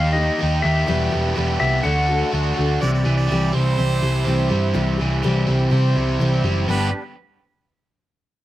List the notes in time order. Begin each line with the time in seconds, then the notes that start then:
Already playing: D#2 D#3 G3 A#3 D#4 G4 F5
0.13 D#4 G4 D#5
0.17 A#3
0.38 D#3 A#3 D#4 G4
0.43 D#2
0.62 D#2 A#3 D#4 G4 E5
0.86 E1 E2 B2 E3 G3 B3 E4 G4
1.11 E3 G3 B3 G4
1.15 E1
1.35 E1 E2 B2 E3 G3 B3 G4
1.60 C2 E3 G3 B3 G4 E5
1.83 D2 D3 F#3 A3 D4 F#4 F#5
2.08 A3 D4 F#4
2.33 D2 D3 A3 D4 F#4
2.57 D2 A3 D4 F#4
2.81 C2 C3 E3 G3 C4 E4 G4 D5
2.93 D5
3.04 C2 E3 G3 C4 G4
3.16 D5
3.27 C2 C3 E3 G3
3.32 G3 C4 G4
3.53 C2 G3 C4 G4 C5
3.78 C2 E3 G3 C4 G4 C5
4.02 C2 G3 C4 E4 G4
4.26 C2 C3 E3 G3 C4 G4
4.50 G2 G3 C4 G4
4.74 C2 C3 E3 G3 C4 G4
4.98 C2 E3 G3 C4 G4
5.23 C2 C3 E3 G3 C4 G4
5.47 C2 G3 C4 G4
5.70 C3 E3 G3 C4 G4 C5
5.96 C2 G3 C4 E4 G4
6.20 C2 C3 E3 G3 C4 G4
6.43 F#1 G3 C4 G4
6.68 G1 G2 D3 G3 B3 D4 G4 B4